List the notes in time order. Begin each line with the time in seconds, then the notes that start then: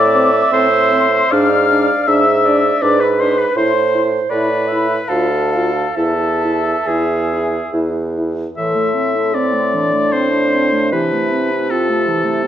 Already playing: A2 D5 E5 D6
0.15 C4
0.51 A2 C4 C5 C6
0.92 C4
1.31 G#2 D4 D5 F5 F6
1.69 D4 D5
2.07 G#2 D4 E5 E6
2.45 D4 D5
2.82 G#2 D4 B4 D5 D6
3.01 B4 B5
3.19 D4 C5 C6
3.38 B4 B5
3.55 A2 E4 C5 C6
3.94 E4
4.29 A2 E4 B4 D5 B5
4.68 E4 E5
5.08 D2 A4 F5 A5
5.12 F4
5.53 F4 F5
5.96 E2 E4 A4 E5 A5
6.45 E4
6.86 E2 E4 G#4 G#5
7.33 E4
7.73 E2 E4
8.18 E4
8.56 A2 E3 A4 E5 C6
8.75 A3
8.94 C4
9.16 E4
9.35 C4 D5
9.53 A3
9.74 E3 D4
9.93 A3
10.12 C4 C5
10.33 E4
10.54 C4
10.72 A3
10.92 C3 E3 E4 B4 A5
11.12 A3
11.32 C4
11.52 E4
11.71 C4 F4 A4
11.90 A3
12.08 E3 E4
12.24 A3
12.44 C4